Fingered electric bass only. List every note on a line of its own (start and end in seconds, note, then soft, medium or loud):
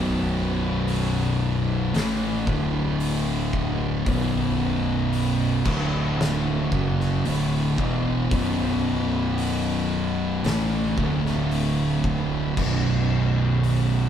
0.00 1.90 B0 loud
1.94 2.43 A1 loud
2.47 4.02 D1 loud
4.06 5.62 B0 loud
5.66 6.68 D1 loud
6.72 7.21 F#1 medium
7.26 7.75 D1 medium
7.78 8.28 E1 medium
8.31 10.41 B0 loud
10.45 10.94 A1 loud
10.97 12.54 D1 loud
12.57 14.09 B0 loud